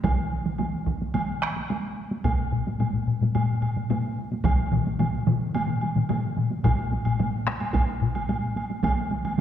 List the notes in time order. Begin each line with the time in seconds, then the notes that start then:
0.03 taiko, taiko mid, taiko high, high woodblock
0.45 taiko mid, taiko high
0.58 taiko mid, taiko high, high woodblock
0.86 taiko, taiko mid
1.02 taiko high
1.14 taiko mid, taiko high, high woodblock
1.42 taiko rim, high woodblock
1.56 taiko high
1.69 taiko high, high woodblock
2.11 taiko high
2.24 taiko, taiko low-mid, taiko high, high woodblock
2.38 taiko low-mid
2.52 taiko low-mid
2.67 taiko high
2.80 taiko low-mid, taiko high, high woodblock
2.93 taiko low-mid
3.07 taiko low-mid
3.21 taiko low-mid, taiko high
3.35 taiko low-mid, taiko high, high woodblock
3.62 taiko low-mid, high woodblock
3.76 taiko low-mid, taiko high
3.90 taiko low-mid, taiko high, high woodblock
4.32 taiko high
4.44 taiko, taiko low-mid, taiko mid, taiko high, high woodblock
4.72 taiko low-mid, taiko mid
4.87 taiko high
4.99 taiko low-mid, taiko mid, taiko high, high woodblock
5.27 taiko low-mid, taiko mid
5.54 taiko low-mid, taiko mid, taiko high, high woodblock
5.68 taiko low-mid, taiko mid
5.81 taiko high, high woodblock
5.96 taiko low-mid, taiko mid, taiko high
6.09 taiko low-mid, taiko mid, taiko high, high woodblock
6.37 taiko low-mid, taiko mid
6.51 taiko high
6.64 taiko, taiko low-mid, taiko high, high woodblock
6.93 taiko high
7.05 taiko low-mid, taiko high, high woodblock
7.19 taiko low-mid, taiko high, high woodblock
7.47 taiko rim, taiko high
7.60 taiko high, high woodblock
7.74 taiko, taiko high, high woodblock
8.02 taiko low-mid
8.15 taiko high, high woodblock
8.29 taiko high, high woodblock
8.56 taiko high, high woodblock
8.70 taiko high
8.83 taiko, taiko mid, taiko high, high woodblock
9.11 taiko high
9.25 taiko mid, taiko high, high woodblock